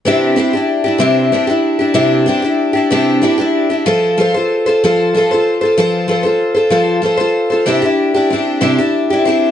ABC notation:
X:1
M:6/8
L:1/16
Q:3/8=63
K:C
V:1 name="Twelve-string acoustic guitar"
[C,CDEG]2 [CDEG] [DEG]2 [DEG] [C,CDEG]2 [CDEG] [DEG]2 [DEG] | [C,CDEG]2 [CDEG] [DEG]2 [DEG] [C,CDEG]2 [CDEG] [DEG]2 [DEG] | [F,FAc]2 [F,FAc] [FAc]2 [FAc] [F,FAc]2 [F,FAc] [FAc]2 [FAc] | [F,FAc]2 [F,FAc] [FAc]2 [FAc] [F,FAc]2 [F,FAc] [FAc]2 [FAc] |
[C,CDEG] [DEG]2 [DEG] [CDEG]2 [C,CDEG] [DEG]2 [DEG] [CDEG]2 |]